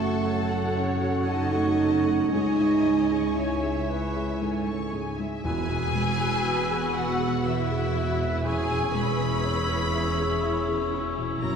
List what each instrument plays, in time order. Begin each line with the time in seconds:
Already playing: double bass section F#1, cello section F#2, felt piano F#2 C#3 A3, french horn section A3, viola section F#4 A4, violin section A4, clarinet A4, oboe C#5, flute F#5
0.00 felt piano F#4, violin section C#6
0.24 felt piano C#5, violin section A5
0.50 felt piano F#4, violin section F#5
0.76 french horn section C#4, violin section C#5, felt piano C#5
1.01 felt piano F#4, violin section F#5
1.27 felt piano C#3, french horn section D#4, violin section D#5 A5
1.52 felt piano A3, violin section C#6
1.78 felt piano C#3, violin section A5
2.05 felt piano A3, violin section F#5
2.30 double bass section C#2, cello section C#2, felt piano C#2, french horn section D#4, viola section E4 C#5, clarinet G#4, violin section C#5 D#5 G#5, flute G#5
2.58 felt piano G#2, violin section E5
2.84 felt piano G#3, violin section G#5
3.10 felt piano G#4, violin section C#6
3.35 french horn section E4, clarinet C#5, felt piano C#5, violin section E5 G#5
3.61 felt piano G#4, violin section E5
3.89 clarinet B4, violin section C#5, felt piano C#5
4.15 felt piano G#4, violin section E5
4.40 felt piano G#2, clarinet A4, violin section G#5
4.66 felt piano G#3, violin section C#6
4.92 felt piano G#2, clarinet G#4, violin section G#5
5.18 felt piano G#3, violin section E5
5.44 double bass section E1, cello section E2, felt piano E2, timpani E2, french horn section B3 F#4, viola section B3 F#4, clarinet F#4, violin section G#4 G#5, oboe B4, flute E6
5.69 felt piano B2
5.95 felt piano G#3
6.21 felt piano F#4
6.46 felt piano B4
6.70 felt piano G#4
6.95 violin section F#4 F#5, felt piano F#5
7.19 felt piano G#4
7.45 violin section E4 E5, clarinet F#4, oboe B4, felt piano F#5, flute E6
7.71 felt piano G#4
7.96 felt piano F#4
8.20 felt piano B2
8.45 felt piano E2, viola section C#4 E4, french horn section C#4 E4, violin section G#4 G#5, clarinet G#4, oboe C#5, flute E6
8.70 felt piano B2
8.95 felt piano G#3, violin section B4 B5
9.19 felt piano E4
9.44 felt piano C#5
9.69 felt piano G#4
9.93 felt piano E5
10.19 felt piano G#4
10.43 felt piano E5
10.68 felt piano G#4
10.93 felt piano E4
11.18 felt piano B2
11.41 double bass section F#1, cello section F#2, felt piano F#2, clarinet F#4, violin section A#4 A#5, oboe C#5, flute E6